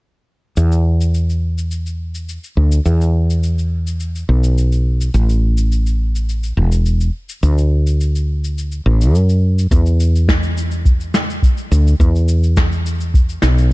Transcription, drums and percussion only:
0.57 shaker medium
0.72 shaker soft
1.01 shaker medium
1.14 shaker medium
1.30 shaker soft
1.58 shaker medium
1.71 shaker medium
1.86 shaker soft
2.15 shaker medium
2.29 shaker medium
2.44 shaker soft
2.72 shaker medium
2.85 shaker medium
3.01 shaker soft
3.30 shaker medium
3.43 shaker medium
3.58 shaker soft
3.87 shaker medium
4.00 shaker medium
4.15 shaker soft
4.44 shaker medium
4.58 shaker medium
4.72 shaker soft
5.01 shaker medium
5.14 shaker medium
5.29 shaker medium
5.57 shaker medium
5.72 shaker medium
5.86 shaker soft
6.15 shaker medium
6.29 shaker medium
6.43 shaker medium
6.72 shaker medium
6.86 shaker medium
7.01 shaker soft
7.29 shaker medium
7.43 shaker medium
7.58 shaker medium
7.87 shaker medium
8.01 shaker medium
8.15 shaker soft
8.44 shaker medium
8.58 shaker medium
8.72 shaker soft
9.01 shaker medium
9.15 shaker medium
9.29 shaker soft
9.59 shaker medium
9.71 kick loud
9.71 shaker medium
9.86 shaker soft
10.00 shaker medium
10.15 shaker soft
10.28 kick loud
10.28 snare medium
10.28 shaker medium
10.43 shaker soft
10.57 shaker medium
10.71 shaker soft
10.85 kick loud
10.85 shaker medium
11.00 shaker soft
11.14 snare medium
11.14 shaker medium
11.30 shaker medium
11.43 kick loud
11.43 shaker medium
11.57 shaker soft
11.72 shaker medium
11.87 shaker medium
12.00 kick loud
12.00 shaker medium
12.15 shaker soft
12.28 shaker medium
12.43 shaker soft
12.57 kick loud
12.57 snare medium
12.57 shaker medium
12.72 shaker soft
12.86 shaker medium
13.01 shaker soft
13.14 kick loud
13.14 shaker medium
13.29 shaker soft
13.42 snare medium
13.42 shaker medium
13.58 shaker soft

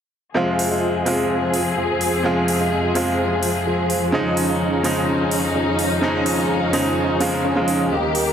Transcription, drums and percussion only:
0.59 open hi-hat loud
1.06 open hi-hat medium
1.54 open hi-hat medium
2.01 open hi-hat medium
2.48 open hi-hat loud
2.95 open hi-hat medium
3.43 open hi-hat loud
3.90 open hi-hat medium
4.37 open hi-hat loud
4.84 open hi-hat medium
5.31 open hi-hat loud
5.79 open hi-hat medium
6.26 open hi-hat loud
6.73 open hi-hat medium
7.21 open hi-hat loud
7.68 open hi-hat medium
8.15 open hi-hat loud

